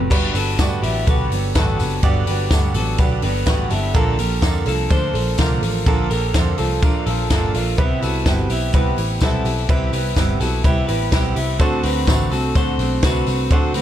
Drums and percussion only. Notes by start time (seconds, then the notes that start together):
0.11 kick, crash
0.35 open hi-hat, tambourine
0.59 kick, snare, ride, tambourine
0.83 open hi-hat, tambourine
1.07 kick, hi-hat pedal, ride, tambourine
1.32 open hi-hat, tambourine
1.55 kick, snare, ride, tambourine
1.79 open hi-hat, tambourine
2.03 kick, hi-hat pedal, ride, tambourine
2.27 open hi-hat, tambourine
2.51 kick, snare, ride, tambourine
2.74 open hi-hat, tambourine
2.98 kick, hi-hat pedal, ride, tambourine
3.22 open hi-hat, tambourine
3.46 kick, snare, ride, tambourine
3.70 open hi-hat, tambourine
3.95 kick, hi-hat pedal, ride
4.19 open hi-hat, tambourine
4.42 kick, snare, ride, tambourine
4.66 open hi-hat, tambourine
4.90 kick, hi-hat pedal, ride, tambourine
5.15 open hi-hat, tambourine
5.38 kick, snare, hi-hat pedal, ride, tambourine
5.63 open hi-hat, tambourine
5.86 kick, ride, tambourine
6.11 open hi-hat, tambourine
6.34 kick, snare, hi-hat pedal, ride, tambourine
6.58 open hi-hat, tambourine
6.82 kick, ride, tambourine
7.06 open hi-hat
7.30 kick, snare, ride, tambourine
7.54 open hi-hat, tambourine
7.78 kick, ride
8.02 open hi-hat, tambourine
8.26 kick, snare, ride, tambourine
8.50 open hi-hat, tambourine
8.73 kick, hi-hat pedal, ride, tambourine
8.98 open hi-hat
9.21 kick, snare, hi-hat pedal, ride, tambourine
9.45 open hi-hat, tambourine
9.69 kick, hi-hat pedal, ride, tambourine
9.93 open hi-hat, tambourine
10.16 kick, snare, ride, tambourine
10.40 open hi-hat, tambourine
10.64 kick, hi-hat pedal, ride, tambourine
10.88 open hi-hat, tambourine
11.12 kick, snare, ride, tambourine
11.36 open hi-hat, tambourine
11.60 kick, hi-hat pedal, ride, tambourine
11.83 open hi-hat, tambourine
12.07 kick, snare, hi-hat pedal, ride, tambourine
12.31 open hi-hat, tambourine
12.55 kick, hi-hat pedal, ride, tambourine
12.79 open hi-hat, tambourine
13.03 kick, snare, hi-hat pedal, ride, tambourine
13.27 open hi-hat, tambourine
13.51 kick, hi-hat pedal, ride
13.74 open hi-hat, tambourine